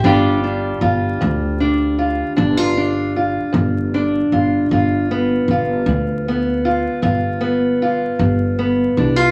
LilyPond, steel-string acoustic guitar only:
\new Staff \with { instrumentName = "Steel-string acoustic guitar" } { \time 12/8 \key g \mixolydian \tempo 4. = 51 << { <g d' f' g'>8 d'8 f'4 d'8 f'8 d'16 f'16 d'8 f'4 d'8 f'8 | f'8 b8 f'4 b8 f'8 f'8 b8 f'4 b8 d'16 f'16 | } \\ { g,4 r8 g,4 r8 g,4 r8 g,4 r8 | g,4 r8 g,4 r8 g,4 r8 g,4 r8 | } >> }